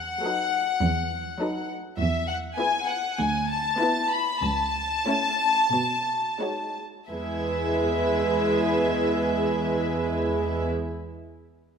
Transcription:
Already playing: cello section E2, violin section F#5
0.23 viola section F#3 D#4, violin section A4 B4
0.81 cello section E2
1.40 viola section F#3 D#4, violin section A4 B4
1.99 cello section E2, violin section E5
2.29 violin section F#5
2.58 viola section B3 E4, violin section G#4 B4 G#5
2.88 violin section F#5
3.19 cello section D2, violin section G#5
3.50 violin section A5
3.80 viola section B3 E4, violin section E4 B4
4.12 violin section B5
4.43 cello section C#2, violin section A5
5.07 viola section A3 C#4, violin section E4 C#5
5.72 cello section B2
6.39 viola section G#3 D#4, violin section F#4 C#5
7.10 cello section E2, viola section G#3 E4, violin section G#4 B4 E5

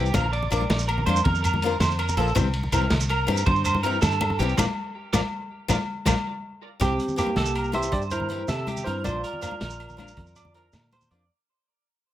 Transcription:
Already playing: fingered electric bass C2, clean electric guitar G4
0.06 shekere
0.14 fingered electric bass A#1, steel-string acoustic guitar F3 A#3 D4 A#4, clean electric guitar A#4, kick, ride, high conga, low conga, low agogo, shekere
0.33 clean electric guitar D5, ride
0.42 low conga
0.50 fingered electric bass A#1, steel-string acoustic guitar F3 A#3 D4 A#4, clean electric guitar D5, ride, low agogo, shekere
0.61 high conga
0.70 fingered electric bass A#1, snare, ride, low conga, shekere
0.79 shekere
0.88 clean electric guitar A#4, ride, low conga, low agogo
0.98 low conga
1.06 fingered electric bass F2, steel-string acoustic guitar A#3 D4 A#4, clean electric guitar C5, muted steel-string acoustic guitar stroke, ride, high conga, low agogo
1.16 low conga, shekere
1.24 fingered electric bass F2, clean electric guitar A#4, kick, ride, low conga
1.35 shekere
1.43 clean electric guitar A#4, ride, low agogo, shekere
1.54 high conga, low conga
1.62 steel-string acoustic guitar F3 A#3 D4 A#4, ride
1.80 fingered electric bass F2, clean electric guitar C5, snare, ride, low conga, low agogo, shekere
1.91 shekere
1.99 clean electric guitar A#4, ride, low agogo
2.09 low conga, shekere
2.17 fingered electric bass A#1, steel-string acoustic guitar F3 A#3 D4 A#4, clean electric guitar A4, ride, low conga, shekere
2.28 shekere
2.35 fingered electric bass C2, steel-string acoustic guitar E3 C4 G4, muted clean electric guitar stroke, muted steel-string acoustic guitar stroke, kick, ride, high conga, low conga, low agogo, shekere
2.53 ride
2.63 low conga
2.72 fingered electric bass C2, steel-string acoustic guitar E3 C4 E4 G4, clean electric guitar A#4, ride, low agogo, shekere
2.81 high conga
2.90 fingered electric bass C2, snare, ride, low conga, shekere
3.00 shekere
3.09 clean electric guitar A#4, ride, low conga, low agogo
3.27 fingered electric bass G2, steel-string acoustic guitar E3 C4 E4 G4, ride, high conga, low agogo
3.37 low conga, shekere
3.46 fingered electric bass G2, clean electric guitar C5, kick, ride, low conga
3.56 shekere
3.64 clean electric guitar C5, ride, low agogo, shekere
3.75 high conga, low conga
3.83 steel-string acoustic guitar E3 C4 E4 G4, clean electric guitar A#4, ride
4.02 fingered electric bass G2, clean electric guitar A4, snare, ride, low conga, low agogo, shekere
4.11 shekere
4.21 ride, high conga, low agogo
4.30 low conga
4.39 fingered electric bass C2, steel-string acoustic guitar E3 C4 E4, clean electric guitar G4, muted steel-string acoustic guitar stroke, ride, shekere
4.49 shekere
4.57 fingered electric bass A#1, steel-string acoustic guitar F3 A#3 D4, clean electric guitar F4 A#4 D5, kick, snare, high conga, low agogo, shekere
5.13 fingered electric bass A#1, steel-string acoustic guitar F3 A#3 D4, clean electric guitar F4 A#4 D5, kick, snare, high conga, low agogo, shekere
5.68 fingered electric bass A#1, steel-string acoustic guitar F3 A#3 D4, clean electric guitar F4 A#4 D5, kick, snare, high conga, low agogo, shekere
6.05 fingered electric bass A#1, steel-string acoustic guitar F3 A#3 D4, clean electric guitar F4 A#4 D5, kick, snare, high conga, low agogo, shekere
6.80 fingered electric bass C2, steel-string acoustic guitar C4 E4 G4, tine electric piano C4 G4, clean electric guitar G4, muted steel-string acoustic guitar stroke, kick, closed hi-hat, high conga, low conga, low agogo, shekere
6.99 closed hi-hat, shekere
7.08 low conga, shekere
7.16 steel-string acoustic guitar E3 C4 E4 G4, tine electric piano A#3 G4, clean electric guitar G4, closed hi-hat, low agogo, shekere
7.27 high conga
7.36 fingered electric bass C2, clean electric guitar A4, snare, closed hi-hat, low conga
7.46 low conga, shekere
7.55 clean electric guitar A#4, closed hi-hat, low agogo
7.64 shekere
7.72 steel-string acoustic guitar E3 C4 E4, tine electric piano G4 E5, clean electric guitar C5, closed hi-hat, high conga, low agogo
7.83 shekere
7.92 fingered electric bass G2, tine electric piano G4 D5, kick, closed hi-hat, low conga
8.02 shekere
8.11 tine electric piano E4 C5, clean electric guitar A#4, closed hi-hat, low agogo, shekere
8.20 high conga, low conga
8.29 steel-string acoustic guitar E3 C4 E4 G4, closed hi-hat
8.39 low conga
8.48 fingered electric bass C3, tine electric piano G4 E5, clean electric guitar A4, snare, closed hi-hat, low conga, low agogo, shekere
8.67 clean electric guitar G4, closed hi-hat, high conga, low agogo, shekere
8.76 low conga, shekere
8.84 fingered electric bass G2, steel-string acoustic guitar E3 C4, tine electric piano E4 C5, clean electric guitar A#4, muted steel-string acoustic guitar stroke, closed hi-hat
8.89 steel-string acoustic guitar G4
9.04 fingered electric bass A#1, steel-string acoustic guitar F3 A#3 D4, tine electric piano F4 D5, clean electric guitar C5, kick, closed hi-hat, high conga, low conga, low agogo, shekere
9.24 clean electric guitar A#4, closed hi-hat, shekere
9.33 low conga
9.41 steel-string acoustic guitar F3 A#3 D4, clean electric guitar A#4, closed hi-hat, low agogo, shekere
9.51 high conga
9.61 fingered electric bass A#1, clean electric guitar A#4, snare, closed hi-hat, low conga
9.70 shekere
9.80 closed hi-hat, low agogo
9.89 low conga, shekere
9.97 steel-string acoustic guitar F3 A#3 D4, clean electric guitar A#4, closed hi-hat, high conga, low agogo
10.08 shekere
10.17 fingered electric bass F2, kick, closed hi-hat, low conga
10.27 shekere
10.36 clean electric guitar D5, closed hi-hat, low agogo, shekere
10.45 high conga, low conga
10.54 steel-string acoustic guitar F3 D4, clean electric guitar A#4, closed hi-hat
10.64 low conga
10.73 fingered electric bass A#2, snare, closed hi-hat, low conga, low agogo, shekere
10.92 clean electric guitar C5, closed hi-hat, high conga, low agogo, shekere
11.01 low conga, shekere
11.11 fingered electric bass F2, steel-string acoustic guitar F3 A#3 D4, clean electric guitar D5, closed hi-hat

